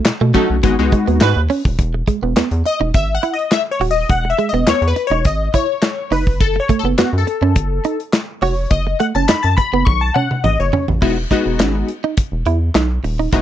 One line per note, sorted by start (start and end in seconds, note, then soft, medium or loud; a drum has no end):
0.05 0.12 B2 soft
0.05 muted clean electric guitar stroke soft
0.05 snare loud
0.05 clap loud
0.05 closed hi-hat loud
0.21 0.32 B2 medium
0.21 0.31 A3 medium
0.34 0.47 F#3 medium
0.34 0.46 F#3 medium
0.34 0.57 A3 medium
0.34 0.57 C#4 medium
0.34 0.47 D#4 medium
0.34 0.57 D#4 medium
0.34 0.57 F#4 loud
0.34 0.47 A4 medium
0.34 kick medium
0.34 closed hi-hat medium
0.50 0.61 B1 medium
0.63 0.76 G#1 loud
0.63 0.75 G#3 loud
0.63 0.76 B3 medium
0.63 0.76 D#4 medium
0.63 0.76 F#4 loud
0.63 muted clean electric guitar stroke soft
0.63 kick loud
0.63 closed hi-hat loud
0.79 0.90 C#2 medium
0.79 1.30 G#3 medium
0.79 1.30 B3 medium
0.79 1.30 D#4 medium
0.79 1.30 F#4 loud
0.92 1.04 G#3 medium
0.92 kick loud
0.92 closed hi-hat medium
1.07 1.19 D#2 medium
1.07 1.18 B3 medium
1.07 closed hi-hat soft
1.21 1.34 G#2 loud
1.21 1.40 G#3 loud
1.21 1.40 F#4 medium
1.21 1.40 B4 loud
1.21 snare loud
1.21 clap medium
1.21 closed hi-hat medium
1.36 1.48 D#2 loud
1.50 1.61 C#4 medium
1.50 open hi-hat medium
1.65 1.76 D#1 medium
1.65 kick loud
1.79 2.03 E1 loud
1.79 kick loud
1.79 closed hi-hat medium
1.94 muted clean electric guitar stroke soft
2.08 2.19 G#3 medium
2.08 kick medium
2.08 closed hi-hat medium
2.23 2.34 E1 loud
2.23 2.33 B3 medium
2.36 2.42 E2 soft
2.36 2.48 B3 medium
2.36 snare loud
2.36 clap loud
2.36 closed hi-hat loud
2.51 2.63 E2 loud
2.51 closed hi-hat medium
2.66 2.79 D#5 loud
2.66 muted clean electric guitar stroke soft
2.66 closed hi-hat medium
2.80 2.92 E1 medium
2.80 2.91 D#4 medium
2.94 3.18 G#1 medium
2.94 3.14 E5 loud
2.94 kick loud
2.94 closed hi-hat loud
3.15 3.34 F#5 loud
3.23 3.34 E4 medium
3.23 closed hi-hat medium
3.34 3.53 D#5 loud
3.39 closed hi-hat soft
3.52 3.61 E5 loud
3.52 snare loud
3.52 clap medium
3.52 closed hi-hat medium
3.71 3.80 C#5 medium
3.80 4.04 D#1 medium
3.80 3.92 F#4 medium
3.80 open hi-hat medium
3.91 4.10 D#5 loud
4.09 4.33 E1 loud
4.09 4.30 F#5 loud
4.09 kick loud
4.09 closed hi-hat medium
4.25 muted clean electric guitar stroke soft
4.30 4.49 E5 loud
4.38 4.50 G#3 medium
4.38 closed hi-hat medium
4.49 4.68 D#5 loud
4.53 4.65 E1 medium
4.53 4.64 B3 medium
4.67 4.73 E2 soft
4.67 4.79 B3 medium
4.67 4.88 C#5 loud
4.67 snare loud
4.67 clap loud
4.67 closed hi-hat loud
4.82 4.93 E2 loud
4.82 closed hi-hat medium
4.88 5.07 B4 medium
4.96 muted clean electric guitar stroke soft
4.96 closed hi-hat medium
5.07 5.27 E1 medium
5.07 5.24 C#5 medium
5.11 5.21 D#4 medium
5.25 5.49 G#1 loud
5.25 5.55 D#5 loud
5.25 kick loud
5.25 closed hi-hat loud
5.54 5.65 E4 medium
5.54 6.14 C#5 loud
5.54 kick medium
5.54 closed hi-hat medium
5.82 snare loud
5.82 clap medium
5.82 closed hi-hat medium
6.11 6.59 F#1 medium
6.11 6.23 D#4 medium
6.11 6.42 B4 medium
6.11 open hi-hat medium
6.27 kick medium
6.41 6.60 A4 loud
6.41 kick loud
6.41 closed hi-hat medium
6.56 6.79 C#5 medium
6.56 muted clean electric guitar stroke soft
6.69 6.81 A3 medium
6.69 kick medium
6.69 closed hi-hat medium
6.79 6.88 A4 medium
6.84 6.95 F#1 loud
6.84 6.95 B3 medium
6.97 7.04 F#2 soft
6.97 7.10 B3 medium
6.97 7.16 F#4 medium
6.97 snare loud
6.97 clap loud
6.97 closed hi-hat loud
7.13 7.24 F#2 medium
7.18 8.00 A4 medium
7.27 muted clean electric guitar stroke soft
7.27 closed hi-hat medium
7.42 7.57 F#2 medium
7.42 7.52 C#4 medium
7.56 7.80 F#1 loud
7.56 kick loud
7.56 closed hi-hat loud
7.84 7.96 D#4 medium
7.84 closed hi-hat medium
8.00 closed hi-hat soft
8.13 snare loud
8.13 clap medium
8.13 closed hi-hat medium
8.42 8.66 F1 medium
8.42 8.54 F#4 medium
8.42 8.72 C#5 medium
8.42 open hi-hat medium
8.71 8.95 F#1 loud
8.71 8.98 D#5 medium
8.71 kick loud
8.71 closed hi-hat medium
8.87 muted clean electric guitar stroke soft
9.00 9.11 A3 medium
9.00 9.07 F#5 medium
9.00 closed hi-hat medium
9.15 9.26 F#1 loud
9.15 9.26 C#4 medium
9.15 9.29 A5 medium
9.28 9.35 F#2 soft
9.28 9.40 D#4 medium
9.28 9.44 B5 loud
9.28 snare loud
9.28 clap loud
9.28 closed hi-hat loud
9.43 9.55 F#2 loud
9.43 9.56 A5 loud
9.43 closed hi-hat medium
9.57 9.87 B5 loud
9.57 muted clean electric guitar stroke soft
9.57 kick medium
9.57 closed hi-hat medium
9.73 9.84 F#1 loud
9.73 9.83 B3 medium
9.85 10.10 B1 loud
9.85 10.02 C#6 loud
9.85 kick loud
9.85 high tom medium
10.01 10.15 A5 loud
10.14 10.27 C#4 medium
10.14 10.45 F#5 medium
10.14 mid tom medium
10.31 mid tom medium
10.44 10.57 A1 medium
10.44 10.60 D#5 loud
10.44 mid tom medium
10.60 10.71 F#1 medium
10.60 10.86 C#5 medium
10.73 10.85 C#4 medium
10.73 floor tom loud
10.88 11.00 A1 medium
10.88 floor tom medium
11.02 11.26 E1 loud
11.02 11.16 G#3 medium
11.02 11.16 B3 medium
11.02 11.16 D#4 medium
11.02 11.13 E4 medium
11.02 11.16 F#4 loud
11.02 kick loud
11.02 crash medium
11.17 muted clean electric guitar stroke soft
11.31 11.89 G#3 medium
11.31 11.90 B3 medium
11.31 11.42 D#4 medium
11.31 11.90 D#4 medium
11.31 11.90 F#4 loud
11.31 kick medium
11.31 closed hi-hat medium
11.46 11.61 E1 medium
11.59 11.83 G#1 medium
11.59 11.71 C#4 medium
11.59 snare loud
11.59 clap medium
11.59 closed hi-hat loud
11.75 muted clean electric guitar stroke soft
11.89 closed hi-hat medium
12.04 12.14 D#4 medium
12.17 kick loud
12.17 closed hi-hat loud
12.32 12.44 E1 medium
12.46 12.70 E2 loud
12.46 12.58 E4 medium
12.46 closed hi-hat medium
12.75 12.99 B1 medium
12.75 12.87 D#4 medium
12.75 snare loud
12.75 clap medium
12.75 closed hi-hat medium
13.04 13.28 D#1 medium
13.04 muted clean electric guitar stroke soft
13.04 open hi-hat medium
13.19 13.29 D#4 medium
13.32 13.42 E1 loud
13.32 13.42 G#3 medium
13.32 13.42 B3 medium
13.32 13.42 D#4 medium
13.32 13.42 E4 medium
13.32 13.42 F#4 loud
13.32 kick loud
13.32 closed hi-hat medium